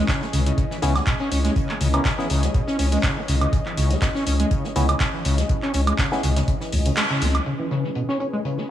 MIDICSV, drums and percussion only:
0, 0, Header, 1, 2, 480
1, 0, Start_track
1, 0, Tempo, 491803
1, 1525, Time_signature, 4, 2, 24, 8
1, 8493, End_track
2, 0, Start_track
2, 0, Title_t, "Drums"
2, 82, Note_on_c, 9, 39, 101
2, 84, Note_on_c, 9, 36, 114
2, 85, Note_on_c, 9, 42, 46
2, 86, Note_off_c, 9, 42, 0
2, 86, Note_on_c, 9, 42, 82
2, 90, Note_on_c, 9, 38, 114
2, 179, Note_off_c, 9, 39, 0
2, 182, Note_off_c, 9, 36, 0
2, 184, Note_off_c, 9, 42, 0
2, 188, Note_off_c, 9, 38, 0
2, 213, Note_on_c, 9, 38, 51
2, 310, Note_off_c, 9, 38, 0
2, 324, Note_on_c, 9, 42, 62
2, 325, Note_on_c, 9, 46, 92
2, 422, Note_off_c, 9, 42, 0
2, 423, Note_off_c, 9, 46, 0
2, 453, Note_on_c, 9, 42, 62
2, 551, Note_off_c, 9, 42, 0
2, 563, Note_on_c, 9, 42, 87
2, 564, Note_on_c, 9, 36, 118
2, 565, Note_off_c, 9, 42, 0
2, 565, Note_on_c, 9, 42, 51
2, 662, Note_off_c, 9, 36, 0
2, 662, Note_off_c, 9, 42, 0
2, 689, Note_on_c, 9, 38, 48
2, 786, Note_off_c, 9, 38, 0
2, 801, Note_on_c, 9, 38, 93
2, 801, Note_on_c, 9, 42, 70
2, 805, Note_on_c, 9, 46, 103
2, 898, Note_off_c, 9, 42, 0
2, 899, Note_off_c, 9, 38, 0
2, 902, Note_off_c, 9, 46, 0
2, 930, Note_on_c, 9, 38, 54
2, 933, Note_on_c, 9, 42, 61
2, 933, Note_on_c, 9, 76, 80
2, 1028, Note_off_c, 9, 38, 0
2, 1030, Note_off_c, 9, 42, 0
2, 1030, Note_off_c, 9, 76, 0
2, 1041, Note_on_c, 9, 39, 111
2, 1044, Note_on_c, 9, 36, 121
2, 1044, Note_on_c, 9, 42, 50
2, 1056, Note_off_c, 9, 42, 0
2, 1056, Note_on_c, 9, 42, 58
2, 1138, Note_off_c, 9, 39, 0
2, 1142, Note_off_c, 9, 36, 0
2, 1153, Note_off_c, 9, 42, 0
2, 1283, Note_on_c, 9, 42, 76
2, 1284, Note_on_c, 9, 46, 89
2, 1381, Note_off_c, 9, 42, 0
2, 1382, Note_off_c, 9, 46, 0
2, 1411, Note_on_c, 9, 38, 42
2, 1412, Note_on_c, 9, 42, 59
2, 1509, Note_off_c, 9, 38, 0
2, 1510, Note_off_c, 9, 42, 0
2, 1524, Note_on_c, 9, 36, 112
2, 1524, Note_on_c, 9, 42, 51
2, 1529, Note_off_c, 9, 42, 0
2, 1529, Note_on_c, 9, 42, 91
2, 1622, Note_off_c, 9, 36, 0
2, 1626, Note_off_c, 9, 42, 0
2, 1649, Note_on_c, 9, 39, 36
2, 1747, Note_off_c, 9, 39, 0
2, 1764, Note_on_c, 9, 46, 105
2, 1769, Note_on_c, 9, 42, 67
2, 1861, Note_off_c, 9, 46, 0
2, 1866, Note_off_c, 9, 42, 0
2, 1892, Note_on_c, 9, 42, 65
2, 1892, Note_on_c, 9, 76, 85
2, 1990, Note_off_c, 9, 42, 0
2, 1990, Note_off_c, 9, 76, 0
2, 2000, Note_on_c, 9, 39, 108
2, 2003, Note_on_c, 9, 42, 89
2, 2004, Note_off_c, 9, 42, 0
2, 2004, Note_on_c, 9, 36, 112
2, 2004, Note_on_c, 9, 38, 117
2, 2004, Note_on_c, 9, 42, 49
2, 2098, Note_off_c, 9, 39, 0
2, 2101, Note_off_c, 9, 36, 0
2, 2101, Note_off_c, 9, 42, 0
2, 2102, Note_off_c, 9, 38, 0
2, 2135, Note_on_c, 9, 38, 56
2, 2232, Note_off_c, 9, 38, 0
2, 2244, Note_on_c, 9, 46, 85
2, 2245, Note_on_c, 9, 38, 38
2, 2246, Note_on_c, 9, 42, 63
2, 2341, Note_off_c, 9, 46, 0
2, 2343, Note_off_c, 9, 38, 0
2, 2344, Note_off_c, 9, 42, 0
2, 2372, Note_on_c, 9, 42, 65
2, 2373, Note_on_c, 9, 38, 54
2, 2469, Note_off_c, 9, 42, 0
2, 2471, Note_off_c, 9, 38, 0
2, 2483, Note_on_c, 9, 42, 51
2, 2484, Note_on_c, 9, 36, 110
2, 2485, Note_off_c, 9, 42, 0
2, 2485, Note_on_c, 9, 42, 84
2, 2581, Note_off_c, 9, 36, 0
2, 2583, Note_off_c, 9, 42, 0
2, 2608, Note_on_c, 9, 38, 51
2, 2706, Note_off_c, 9, 38, 0
2, 2720, Note_on_c, 9, 46, 82
2, 2724, Note_off_c, 9, 46, 0
2, 2724, Note_on_c, 9, 46, 104
2, 2821, Note_off_c, 9, 46, 0
2, 2852, Note_on_c, 9, 42, 63
2, 2950, Note_off_c, 9, 42, 0
2, 2960, Note_on_c, 9, 39, 117
2, 2964, Note_on_c, 9, 36, 112
2, 2964, Note_on_c, 9, 38, 111
2, 2964, Note_on_c, 9, 42, 52
2, 3058, Note_off_c, 9, 39, 0
2, 3061, Note_off_c, 9, 36, 0
2, 3061, Note_off_c, 9, 42, 0
2, 3062, Note_off_c, 9, 38, 0
2, 3203, Note_on_c, 9, 38, 41
2, 3203, Note_on_c, 9, 42, 62
2, 3204, Note_on_c, 9, 46, 85
2, 3300, Note_off_c, 9, 38, 0
2, 3300, Note_off_c, 9, 42, 0
2, 3302, Note_off_c, 9, 46, 0
2, 3332, Note_on_c, 9, 42, 60
2, 3332, Note_on_c, 9, 76, 60
2, 3430, Note_off_c, 9, 42, 0
2, 3430, Note_off_c, 9, 76, 0
2, 3444, Note_on_c, 9, 36, 115
2, 3444, Note_on_c, 9, 42, 51
2, 3447, Note_off_c, 9, 42, 0
2, 3447, Note_on_c, 9, 42, 85
2, 3541, Note_off_c, 9, 36, 0
2, 3545, Note_off_c, 9, 42, 0
2, 3569, Note_on_c, 9, 39, 38
2, 3667, Note_off_c, 9, 39, 0
2, 3680, Note_on_c, 9, 42, 65
2, 3681, Note_on_c, 9, 38, 43
2, 3684, Note_on_c, 9, 46, 99
2, 3778, Note_off_c, 9, 42, 0
2, 3779, Note_off_c, 9, 38, 0
2, 3782, Note_off_c, 9, 46, 0
2, 3812, Note_on_c, 9, 42, 70
2, 3816, Note_on_c, 9, 38, 38
2, 3910, Note_off_c, 9, 42, 0
2, 3913, Note_off_c, 9, 38, 0
2, 3921, Note_on_c, 9, 39, 106
2, 3924, Note_on_c, 9, 36, 108
2, 3924, Note_on_c, 9, 42, 52
2, 3925, Note_off_c, 9, 42, 0
2, 3925, Note_on_c, 9, 38, 127
2, 3925, Note_on_c, 9, 42, 94
2, 4018, Note_off_c, 9, 39, 0
2, 4021, Note_off_c, 9, 36, 0
2, 4022, Note_off_c, 9, 38, 0
2, 4023, Note_off_c, 9, 42, 0
2, 4054, Note_on_c, 9, 38, 58
2, 4152, Note_off_c, 9, 38, 0
2, 4164, Note_on_c, 9, 42, 72
2, 4164, Note_on_c, 9, 46, 87
2, 4261, Note_off_c, 9, 46, 0
2, 4262, Note_off_c, 9, 42, 0
2, 4292, Note_on_c, 9, 42, 68
2, 4389, Note_off_c, 9, 42, 0
2, 4399, Note_on_c, 9, 42, 96
2, 4404, Note_off_c, 9, 42, 0
2, 4404, Note_on_c, 9, 36, 117
2, 4404, Note_on_c, 9, 42, 55
2, 4501, Note_off_c, 9, 36, 0
2, 4501, Note_off_c, 9, 42, 0
2, 4530, Note_on_c, 9, 38, 43
2, 4628, Note_off_c, 9, 38, 0
2, 4643, Note_on_c, 9, 42, 70
2, 4644, Note_on_c, 9, 46, 95
2, 4741, Note_off_c, 9, 42, 0
2, 4741, Note_off_c, 9, 46, 0
2, 4768, Note_on_c, 9, 42, 39
2, 4772, Note_off_c, 9, 42, 0
2, 4772, Note_on_c, 9, 42, 70
2, 4772, Note_on_c, 9, 76, 90
2, 4870, Note_off_c, 9, 42, 0
2, 4870, Note_off_c, 9, 76, 0
2, 4880, Note_on_c, 9, 39, 116
2, 4881, Note_on_c, 9, 38, 111
2, 4883, Note_on_c, 9, 42, 78
2, 4884, Note_off_c, 9, 42, 0
2, 4884, Note_on_c, 9, 36, 109
2, 4884, Note_on_c, 9, 42, 55
2, 4978, Note_off_c, 9, 39, 0
2, 4979, Note_off_c, 9, 38, 0
2, 4981, Note_off_c, 9, 36, 0
2, 4981, Note_off_c, 9, 42, 0
2, 5124, Note_on_c, 9, 46, 83
2, 5125, Note_on_c, 9, 42, 72
2, 5221, Note_off_c, 9, 46, 0
2, 5223, Note_off_c, 9, 42, 0
2, 5252, Note_on_c, 9, 42, 64
2, 5253, Note_on_c, 9, 38, 56
2, 5349, Note_off_c, 9, 42, 0
2, 5351, Note_off_c, 9, 38, 0
2, 5359, Note_on_c, 9, 42, 87
2, 5364, Note_off_c, 9, 42, 0
2, 5364, Note_on_c, 9, 36, 114
2, 5364, Note_on_c, 9, 42, 54
2, 5461, Note_off_c, 9, 36, 0
2, 5461, Note_off_c, 9, 42, 0
2, 5489, Note_on_c, 9, 39, 38
2, 5586, Note_off_c, 9, 39, 0
2, 5596, Note_on_c, 9, 42, 62
2, 5604, Note_on_c, 9, 46, 105
2, 5694, Note_off_c, 9, 42, 0
2, 5701, Note_off_c, 9, 46, 0
2, 5732, Note_on_c, 9, 42, 70
2, 5732, Note_on_c, 9, 76, 85
2, 5829, Note_off_c, 9, 42, 0
2, 5829, Note_off_c, 9, 76, 0
2, 5841, Note_on_c, 9, 39, 115
2, 5842, Note_on_c, 9, 38, 115
2, 5844, Note_on_c, 9, 36, 112
2, 5844, Note_on_c, 9, 42, 93
2, 5938, Note_off_c, 9, 39, 0
2, 5940, Note_off_c, 9, 38, 0
2, 5941, Note_off_c, 9, 36, 0
2, 5942, Note_off_c, 9, 42, 0
2, 5972, Note_on_c, 9, 38, 64
2, 6070, Note_off_c, 9, 38, 0
2, 6080, Note_on_c, 9, 38, 39
2, 6084, Note_on_c, 9, 46, 86
2, 6091, Note_on_c, 9, 42, 64
2, 6178, Note_off_c, 9, 38, 0
2, 6181, Note_off_c, 9, 46, 0
2, 6188, Note_off_c, 9, 42, 0
2, 6210, Note_on_c, 9, 38, 60
2, 6212, Note_on_c, 9, 42, 70
2, 6308, Note_off_c, 9, 38, 0
2, 6309, Note_off_c, 9, 42, 0
2, 6324, Note_on_c, 9, 36, 111
2, 6324, Note_on_c, 9, 42, 83
2, 6421, Note_off_c, 9, 36, 0
2, 6422, Note_off_c, 9, 42, 0
2, 6446, Note_on_c, 9, 38, 52
2, 6544, Note_off_c, 9, 38, 0
2, 6563, Note_on_c, 9, 46, 102
2, 6565, Note_off_c, 9, 46, 0
2, 6565, Note_on_c, 9, 46, 80
2, 6663, Note_off_c, 9, 46, 0
2, 6692, Note_on_c, 9, 42, 67
2, 6790, Note_off_c, 9, 42, 0
2, 6800, Note_on_c, 9, 39, 121
2, 6803, Note_on_c, 9, 42, 57
2, 6804, Note_on_c, 9, 38, 107
2, 6897, Note_off_c, 9, 39, 0
2, 6901, Note_off_c, 9, 42, 0
2, 6902, Note_off_c, 9, 38, 0
2, 7044, Note_on_c, 9, 46, 86
2, 7141, Note_off_c, 9, 46, 0
2, 7172, Note_on_c, 9, 42, 62
2, 7172, Note_on_c, 9, 76, 61
2, 7269, Note_off_c, 9, 42, 0
2, 7269, Note_off_c, 9, 76, 0
2, 7280, Note_on_c, 9, 42, 82
2, 7378, Note_off_c, 9, 42, 0
2, 7524, Note_on_c, 9, 42, 64
2, 7526, Note_on_c, 9, 38, 43
2, 7621, Note_off_c, 9, 42, 0
2, 7624, Note_off_c, 9, 38, 0
2, 7651, Note_on_c, 9, 38, 34
2, 7748, Note_off_c, 9, 38, 0
2, 7760, Note_on_c, 9, 42, 82
2, 7857, Note_off_c, 9, 42, 0
2, 7894, Note_on_c, 9, 38, 56
2, 7991, Note_off_c, 9, 38, 0
2, 8002, Note_on_c, 9, 42, 67
2, 8100, Note_off_c, 9, 42, 0
2, 8246, Note_on_c, 9, 42, 87
2, 8344, Note_off_c, 9, 42, 0
2, 8371, Note_on_c, 9, 38, 42
2, 8469, Note_off_c, 9, 38, 0
2, 8493, End_track
0, 0, End_of_file